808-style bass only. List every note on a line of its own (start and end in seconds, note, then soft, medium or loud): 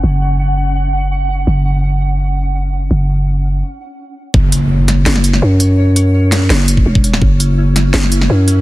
0.04 1.45 F#1 medium
1.47 2.89 F#1 medium
2.91 3.63 F#1 medium
4.34 5.05 F#1 loud
5.06 5.41 F#1 medium
5.42 6.49 F#2 loud
6.50 6.85 F#1 medium
6.86 7.21 E1 loud
7.22 7.92 F#1 loud
7.94 8.28 F#1 loud
8.30 8.61 F#2 loud